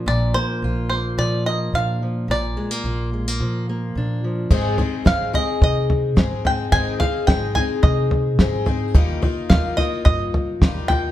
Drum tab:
CC |--------|--------|x-------|--------|
SD |--------|--------|--o---o-|--o---o-|
FT |--------|--------|oooooooo|oooooooo|
BD |--------|--------|o-o-o-o-|o-o-o-o-|

CC |--------|
SD |--o---o-|
FT |oooooooo|
BD |o-o-o-o-|